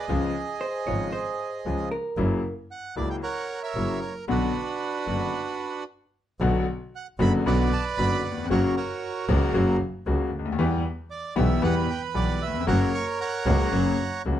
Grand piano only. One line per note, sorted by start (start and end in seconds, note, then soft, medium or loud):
0.09 0.31 C#2 medium
0.09 0.31 C#3 medium
0.09 0.31 F3 medium
0.09 0.31 G#3 medium
0.09 0.31 F4 medium
0.87 1.10 G#1 medium
0.87 1.10 G#2 soft
0.87 1.10 C#3 soft
0.87 1.10 F3 soft
0.87 1.10 G#3 soft
0.87 1.10 F4 soft
1.66 1.88 C#2 medium
1.66 1.88 C#3 medium
1.66 1.88 F3 soft
1.66 1.88 G#3 soft
1.66 1.88 F4 medium
2.17 2.40 F#2 medium
2.17 2.40 C#3 medium
2.17 2.40 F#3 medium
2.17 2.40 A#3 medium
2.17 2.40 E4 medium
2.96 3.19 C#2 medium
2.96 3.19 C#3 medium
2.96 3.18 F#3 soft
2.96 3.19 A#3 soft
2.96 3.19 E4 soft
3.76 3.98 F#2 soft
3.76 3.98 C#3 soft
3.76 3.98 F#3 medium
3.76 3.98 A#3 soft
3.76 3.98 E4 soft
4.28 4.50 B1 medium
4.28 4.50 B2 medium
4.28 4.50 D3 medium
4.28 4.50 F#3 medium
4.28 4.50 B3 medium
4.28 4.51 F#4 medium
5.07 5.29 F#1 soft
5.07 5.30 F#2 soft
5.07 5.29 D3 soft
5.07 5.29 F#3 soft
5.07 5.29 B3 soft
5.07 5.30 F#4 soft
6.41 6.63 B1 medium
6.41 6.63 B2 medium
6.41 6.63 D3 medium
6.41 6.63 F#3 medium
6.41 6.63 B3 medium
6.41 6.63 F#4 medium
7.19 7.42 F#1 medium
7.19 7.41 F#2 medium
7.19 7.41 D3 medium
7.19 7.42 F#3 medium
7.19 7.41 B3 medium
7.19 7.42 F#4 medium
7.46 7.68 B1 medium
7.46 7.68 B2 medium
7.46 7.68 D3 medium
7.46 7.68 F#3 medium
7.46 7.68 B3 medium
7.46 7.68 F#4 medium
7.98 8.21 F#1 medium
7.98 8.20 F#2 medium
7.98 8.20 D3 medium
7.98 8.20 F#3 soft
7.98 8.21 B3 soft
7.98 8.21 F#4 medium
8.31 8.37 D#2 medium
8.38 8.44 E2 medium
8.44 8.50 F2 medium
8.50 8.73 F#2 loud
8.50 8.72 C#3 medium
8.50 8.73 F#3 medium
8.50 8.73 A#3 medium
8.50 8.73 F#4 medium
9.28 9.50 C#2 loud
9.28 9.51 C#3 medium
9.28 9.51 F#3 medium
9.28 9.51 A#3 medium
9.28 9.51 F#4 medium
9.54 9.76 F#2 medium
9.54 9.76 C#3 medium
9.54 9.76 F#3 loud
9.54 9.76 A#3 medium
9.54 9.76 F#4 medium
10.06 10.28 C#2 medium
10.06 10.28 C#3 medium
10.06 10.28 F#3 medium
10.06 10.28 A#3 soft
10.06 10.29 F#4 medium
10.39 10.45 C#2 medium
10.45 10.52 D2 medium
10.52 10.59 D#2 medium
10.59 10.81 E2 medium
10.59 10.80 E3 loud
10.59 10.80 G3 medium
10.59 10.81 B3 medium
10.59 10.81 G4 medium
11.36 11.58 B1 medium
11.36 11.58 B2 loud
11.36 11.58 E3 medium
11.36 11.58 G3 medium
11.36 11.58 B3 medium
11.36 11.58 G4 medium
11.62 11.84 E2 loud
11.62 11.84 E3 loud
11.62 11.84 G3 medium
11.62 11.84 B3 medium
11.62 11.85 G4 medium
12.14 12.37 B1 medium
12.14 12.37 B2 medium
12.14 12.37 E3 medium
12.14 12.37 G3 soft
12.14 12.37 B3 soft
12.14 12.37 G4 medium
12.47 12.54 D#2 medium
12.54 12.61 E2 medium
12.60 12.67 F2 medium
12.67 12.89 F#2 loud
12.67 12.89 C#3 medium
12.67 12.89 F#3 loud
12.67 12.89 A#3 medium
12.67 12.89 F#4 medium
13.46 13.68 C#2 medium
13.46 13.68 C#3 medium
13.46 13.68 F#3 medium
13.46 13.68 A#3 medium
13.46 13.68 F#4 medium
13.72 13.95 F#2 medium
13.72 13.95 C#3 medium
13.72 13.95 F#3 loud
13.72 13.95 A#3 medium
13.72 13.95 F#4 medium
14.26 14.40 C#2 medium
14.26 14.40 C#3 medium
14.26 14.40 F#3 soft
14.26 14.40 A#3 soft
14.26 14.40 F#4 medium